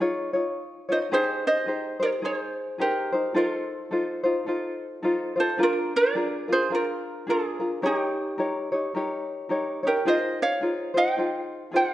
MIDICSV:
0, 0, Header, 1, 3, 480
1, 0, Start_track
1, 0, Key_signature, -4, "major"
1, 0, Tempo, 558140
1, 961, Time_signature, 4, 2, 24, 8
1, 10267, End_track
2, 0, Start_track
2, 0, Title_t, "Ukulele"
2, 0, Program_c, 0, 24
2, 0, Note_on_c, 0, 73, 81
2, 461, Note_off_c, 0, 73, 0
2, 789, Note_on_c, 0, 72, 61
2, 795, Note_on_c, 0, 75, 78
2, 840, Note_off_c, 0, 72, 0
2, 841, Note_off_c, 0, 75, 0
2, 975, Note_on_c, 0, 68, 76
2, 981, Note_on_c, 0, 72, 97
2, 1237, Note_off_c, 0, 68, 0
2, 1255, Note_off_c, 0, 72, 0
2, 1264, Note_on_c, 0, 72, 78
2, 1267, Note_on_c, 0, 75, 86
2, 1705, Note_off_c, 0, 72, 0
2, 1740, Note_off_c, 0, 75, 0
2, 1741, Note_on_c, 0, 70, 70
2, 1743, Note_on_c, 0, 73, 75
2, 1792, Note_off_c, 0, 73, 0
2, 1793, Note_off_c, 0, 70, 0
2, 1934, Note_on_c, 0, 68, 65
2, 1939, Note_on_c, 0, 73, 77
2, 2034, Note_off_c, 0, 73, 0
2, 2034, Note_on_c, 0, 72, 77
2, 2377, Note_off_c, 0, 68, 0
2, 2418, Note_off_c, 0, 72, 0
2, 2419, Note_on_c, 0, 67, 56
2, 2421, Note_on_c, 0, 70, 74
2, 2859, Note_off_c, 0, 70, 0
2, 2860, Note_off_c, 0, 67, 0
2, 2895, Note_on_c, 0, 65, 54
2, 2903, Note_on_c, 0, 69, 62
2, 3819, Note_off_c, 0, 65, 0
2, 3819, Note_off_c, 0, 69, 0
2, 4643, Note_on_c, 0, 72, 86
2, 4644, Note_on_c, 0, 69, 60
2, 4808, Note_off_c, 0, 69, 0
2, 4828, Note_off_c, 0, 72, 0
2, 4841, Note_on_c, 0, 65, 88
2, 4845, Note_on_c, 0, 70, 83
2, 5094, Note_off_c, 0, 65, 0
2, 5118, Note_off_c, 0, 70, 0
2, 5128, Note_on_c, 0, 70, 72
2, 5131, Note_on_c, 0, 74, 96
2, 5560, Note_off_c, 0, 70, 0
2, 5606, Note_off_c, 0, 74, 0
2, 5612, Note_on_c, 0, 72, 85
2, 5616, Note_on_c, 0, 68, 65
2, 5776, Note_off_c, 0, 68, 0
2, 5792, Note_off_c, 0, 72, 0
2, 5801, Note_on_c, 0, 65, 67
2, 5803, Note_on_c, 0, 70, 81
2, 6233, Note_off_c, 0, 65, 0
2, 6274, Note_off_c, 0, 70, 0
2, 6277, Note_on_c, 0, 68, 80
2, 6285, Note_on_c, 0, 65, 62
2, 6715, Note_off_c, 0, 65, 0
2, 6753, Note_off_c, 0, 68, 0
2, 6757, Note_on_c, 0, 67, 78
2, 6766, Note_on_c, 0, 63, 59
2, 7668, Note_off_c, 0, 67, 0
2, 7672, Note_off_c, 0, 63, 0
2, 8486, Note_on_c, 0, 67, 59
2, 8492, Note_on_c, 0, 70, 80
2, 8651, Note_off_c, 0, 67, 0
2, 8663, Note_off_c, 0, 70, 0
2, 8667, Note_on_c, 0, 72, 80
2, 8673, Note_on_c, 0, 75, 87
2, 8926, Note_off_c, 0, 72, 0
2, 8927, Note_off_c, 0, 75, 0
2, 8964, Note_on_c, 0, 73, 77
2, 8967, Note_on_c, 0, 77, 87
2, 9396, Note_off_c, 0, 73, 0
2, 9436, Note_on_c, 0, 75, 74
2, 9438, Note_off_c, 0, 77, 0
2, 9441, Note_on_c, 0, 79, 92
2, 10063, Note_off_c, 0, 75, 0
2, 10112, Note_on_c, 0, 72, 71
2, 10113, Note_off_c, 0, 79, 0
2, 10117, Note_on_c, 0, 77, 76
2, 10267, Note_off_c, 0, 72, 0
2, 10267, Note_off_c, 0, 77, 0
2, 10267, End_track
3, 0, Start_track
3, 0, Title_t, "Ukulele"
3, 0, Program_c, 1, 24
3, 3, Note_on_c, 1, 68, 63
3, 7, Note_on_c, 1, 63, 73
3, 8, Note_on_c, 1, 65, 84
3, 12, Note_on_c, 1, 73, 88
3, 276, Note_off_c, 1, 73, 0
3, 283, Note_off_c, 1, 65, 0
3, 286, Note_on_c, 1, 73, 61
3, 289, Note_off_c, 1, 68, 0
3, 291, Note_off_c, 1, 63, 0
3, 294, Note_on_c, 1, 65, 48
3, 304, Note_on_c, 1, 63, 48
3, 752, Note_off_c, 1, 73, 0
3, 761, Note_off_c, 1, 65, 0
3, 762, Note_on_c, 1, 73, 55
3, 772, Note_on_c, 1, 65, 43
3, 780, Note_off_c, 1, 63, 0
3, 783, Note_on_c, 1, 63, 44
3, 952, Note_off_c, 1, 63, 0
3, 955, Note_off_c, 1, 65, 0
3, 958, Note_off_c, 1, 73, 0
3, 959, Note_on_c, 1, 68, 84
3, 962, Note_on_c, 1, 63, 71
3, 967, Note_on_c, 1, 67, 86
3, 969, Note_on_c, 1, 72, 85
3, 1418, Note_off_c, 1, 68, 0
3, 1429, Note_on_c, 1, 68, 51
3, 1433, Note_off_c, 1, 67, 0
3, 1435, Note_off_c, 1, 63, 0
3, 1438, Note_on_c, 1, 63, 54
3, 1442, Note_off_c, 1, 72, 0
3, 1443, Note_on_c, 1, 67, 55
3, 1446, Note_on_c, 1, 72, 63
3, 1706, Note_off_c, 1, 72, 0
3, 1715, Note_off_c, 1, 67, 0
3, 1717, Note_on_c, 1, 72, 45
3, 1722, Note_off_c, 1, 68, 0
3, 1723, Note_off_c, 1, 63, 0
3, 1726, Note_on_c, 1, 67, 48
3, 1733, Note_on_c, 1, 63, 43
3, 1904, Note_off_c, 1, 63, 0
3, 1906, Note_off_c, 1, 67, 0
3, 1910, Note_on_c, 1, 68, 55
3, 1914, Note_on_c, 1, 63, 54
3, 1916, Note_off_c, 1, 72, 0
3, 1927, Note_on_c, 1, 72, 62
3, 2383, Note_off_c, 1, 68, 0
3, 2393, Note_on_c, 1, 68, 60
3, 2399, Note_off_c, 1, 63, 0
3, 2402, Note_on_c, 1, 63, 59
3, 2404, Note_on_c, 1, 67, 56
3, 2408, Note_off_c, 1, 72, 0
3, 2412, Note_on_c, 1, 72, 64
3, 2676, Note_off_c, 1, 72, 0
3, 2686, Note_off_c, 1, 68, 0
3, 2687, Note_off_c, 1, 67, 0
3, 2687, Note_on_c, 1, 72, 51
3, 2691, Note_off_c, 1, 63, 0
3, 2697, Note_on_c, 1, 67, 46
3, 2700, Note_on_c, 1, 63, 47
3, 2869, Note_off_c, 1, 63, 0
3, 2876, Note_on_c, 1, 69, 74
3, 2879, Note_off_c, 1, 72, 0
3, 2879, Note_on_c, 1, 63, 76
3, 2880, Note_off_c, 1, 67, 0
3, 2883, Note_on_c, 1, 65, 83
3, 2890, Note_on_c, 1, 72, 92
3, 3351, Note_off_c, 1, 69, 0
3, 3357, Note_off_c, 1, 63, 0
3, 3361, Note_on_c, 1, 69, 61
3, 3365, Note_off_c, 1, 72, 0
3, 3367, Note_on_c, 1, 63, 62
3, 3368, Note_off_c, 1, 65, 0
3, 3372, Note_on_c, 1, 65, 63
3, 3375, Note_on_c, 1, 72, 62
3, 3632, Note_off_c, 1, 72, 0
3, 3642, Note_on_c, 1, 72, 59
3, 3644, Note_off_c, 1, 65, 0
3, 3651, Note_off_c, 1, 63, 0
3, 3651, Note_off_c, 1, 69, 0
3, 3655, Note_on_c, 1, 65, 50
3, 3662, Note_on_c, 1, 63, 50
3, 3835, Note_off_c, 1, 63, 0
3, 3839, Note_on_c, 1, 69, 63
3, 3840, Note_off_c, 1, 65, 0
3, 3841, Note_off_c, 1, 72, 0
3, 3845, Note_on_c, 1, 63, 65
3, 3850, Note_on_c, 1, 65, 68
3, 3858, Note_on_c, 1, 72, 68
3, 4311, Note_off_c, 1, 69, 0
3, 4315, Note_off_c, 1, 63, 0
3, 4322, Note_on_c, 1, 69, 67
3, 4326, Note_on_c, 1, 63, 71
3, 4330, Note_off_c, 1, 72, 0
3, 4332, Note_off_c, 1, 65, 0
3, 4336, Note_on_c, 1, 65, 75
3, 4340, Note_on_c, 1, 72, 66
3, 4597, Note_off_c, 1, 72, 0
3, 4607, Note_off_c, 1, 65, 0
3, 4607, Note_on_c, 1, 72, 50
3, 4612, Note_off_c, 1, 63, 0
3, 4612, Note_off_c, 1, 69, 0
3, 4617, Note_on_c, 1, 65, 49
3, 4623, Note_on_c, 1, 63, 41
3, 4796, Note_on_c, 1, 68, 72
3, 4798, Note_off_c, 1, 65, 0
3, 4799, Note_off_c, 1, 63, 0
3, 4802, Note_on_c, 1, 62, 82
3, 4804, Note_off_c, 1, 72, 0
3, 4808, Note_on_c, 1, 65, 87
3, 4808, Note_on_c, 1, 70, 87
3, 5279, Note_off_c, 1, 68, 0
3, 5284, Note_off_c, 1, 62, 0
3, 5289, Note_off_c, 1, 65, 0
3, 5290, Note_on_c, 1, 68, 60
3, 5294, Note_on_c, 1, 62, 65
3, 5297, Note_off_c, 1, 70, 0
3, 5299, Note_on_c, 1, 65, 62
3, 5301, Note_on_c, 1, 70, 68
3, 5563, Note_off_c, 1, 70, 0
3, 5571, Note_off_c, 1, 65, 0
3, 5573, Note_on_c, 1, 70, 49
3, 5577, Note_off_c, 1, 68, 0
3, 5579, Note_off_c, 1, 62, 0
3, 5581, Note_on_c, 1, 65, 43
3, 5591, Note_on_c, 1, 62, 44
3, 5759, Note_off_c, 1, 62, 0
3, 5764, Note_on_c, 1, 68, 53
3, 5767, Note_off_c, 1, 70, 0
3, 5768, Note_off_c, 1, 65, 0
3, 5769, Note_on_c, 1, 62, 52
3, 5778, Note_on_c, 1, 65, 60
3, 5780, Note_on_c, 1, 70, 64
3, 6240, Note_off_c, 1, 68, 0
3, 6249, Note_off_c, 1, 62, 0
3, 6250, Note_on_c, 1, 68, 54
3, 6254, Note_off_c, 1, 65, 0
3, 6259, Note_on_c, 1, 62, 55
3, 6266, Note_on_c, 1, 65, 56
3, 6268, Note_off_c, 1, 70, 0
3, 6271, Note_on_c, 1, 70, 68
3, 6521, Note_off_c, 1, 70, 0
3, 6529, Note_off_c, 1, 65, 0
3, 6532, Note_on_c, 1, 70, 47
3, 6535, Note_off_c, 1, 62, 0
3, 6537, Note_off_c, 1, 68, 0
3, 6540, Note_on_c, 1, 65, 47
3, 6546, Note_on_c, 1, 62, 41
3, 6717, Note_off_c, 1, 70, 0
3, 6727, Note_on_c, 1, 70, 73
3, 6729, Note_off_c, 1, 62, 0
3, 6729, Note_off_c, 1, 65, 0
3, 6733, Note_on_c, 1, 63, 83
3, 6733, Note_on_c, 1, 67, 77
3, 6737, Note_on_c, 1, 73, 87
3, 7195, Note_off_c, 1, 70, 0
3, 7205, Note_on_c, 1, 70, 59
3, 7206, Note_off_c, 1, 67, 0
3, 7209, Note_off_c, 1, 63, 0
3, 7211, Note_off_c, 1, 73, 0
3, 7212, Note_on_c, 1, 63, 63
3, 7217, Note_on_c, 1, 67, 59
3, 7221, Note_on_c, 1, 73, 63
3, 7487, Note_off_c, 1, 73, 0
3, 7494, Note_off_c, 1, 67, 0
3, 7494, Note_off_c, 1, 70, 0
3, 7497, Note_on_c, 1, 73, 59
3, 7498, Note_off_c, 1, 63, 0
3, 7504, Note_on_c, 1, 67, 48
3, 7515, Note_on_c, 1, 63, 46
3, 7689, Note_off_c, 1, 73, 0
3, 7692, Note_off_c, 1, 63, 0
3, 7692, Note_off_c, 1, 67, 0
3, 7693, Note_on_c, 1, 70, 59
3, 7702, Note_on_c, 1, 63, 64
3, 7707, Note_on_c, 1, 67, 65
3, 7711, Note_on_c, 1, 73, 72
3, 8153, Note_off_c, 1, 70, 0
3, 8163, Note_on_c, 1, 70, 58
3, 8164, Note_off_c, 1, 67, 0
3, 8166, Note_off_c, 1, 63, 0
3, 8169, Note_off_c, 1, 73, 0
3, 8169, Note_on_c, 1, 63, 72
3, 8175, Note_on_c, 1, 67, 61
3, 8179, Note_on_c, 1, 73, 76
3, 8444, Note_off_c, 1, 73, 0
3, 8453, Note_off_c, 1, 70, 0
3, 8454, Note_on_c, 1, 73, 48
3, 8455, Note_off_c, 1, 67, 0
3, 8456, Note_off_c, 1, 63, 0
3, 8466, Note_on_c, 1, 67, 43
3, 8471, Note_on_c, 1, 63, 43
3, 8643, Note_off_c, 1, 63, 0
3, 8647, Note_off_c, 1, 73, 0
3, 8647, Note_on_c, 1, 68, 68
3, 8653, Note_off_c, 1, 67, 0
3, 8653, Note_on_c, 1, 63, 79
3, 8657, Note_on_c, 1, 65, 83
3, 8661, Note_on_c, 1, 72, 78
3, 9122, Note_off_c, 1, 68, 0
3, 9126, Note_on_c, 1, 68, 53
3, 9127, Note_off_c, 1, 65, 0
3, 9129, Note_off_c, 1, 72, 0
3, 9130, Note_off_c, 1, 63, 0
3, 9133, Note_on_c, 1, 63, 65
3, 9137, Note_on_c, 1, 65, 64
3, 9139, Note_on_c, 1, 72, 56
3, 9398, Note_off_c, 1, 72, 0
3, 9408, Note_on_c, 1, 72, 51
3, 9409, Note_off_c, 1, 65, 0
3, 9413, Note_off_c, 1, 68, 0
3, 9417, Note_off_c, 1, 63, 0
3, 9419, Note_on_c, 1, 65, 43
3, 9428, Note_on_c, 1, 63, 37
3, 9601, Note_off_c, 1, 63, 0
3, 9603, Note_off_c, 1, 72, 0
3, 9605, Note_on_c, 1, 68, 53
3, 9609, Note_off_c, 1, 65, 0
3, 9612, Note_on_c, 1, 63, 52
3, 9620, Note_on_c, 1, 65, 59
3, 9620, Note_on_c, 1, 72, 56
3, 10072, Note_off_c, 1, 68, 0
3, 10075, Note_on_c, 1, 68, 62
3, 10080, Note_off_c, 1, 65, 0
3, 10082, Note_off_c, 1, 63, 0
3, 10086, Note_off_c, 1, 72, 0
3, 10086, Note_on_c, 1, 63, 56
3, 10090, Note_on_c, 1, 65, 62
3, 10096, Note_on_c, 1, 72, 61
3, 10267, Note_off_c, 1, 63, 0
3, 10267, Note_off_c, 1, 65, 0
3, 10267, Note_off_c, 1, 68, 0
3, 10267, Note_off_c, 1, 72, 0
3, 10267, End_track
0, 0, End_of_file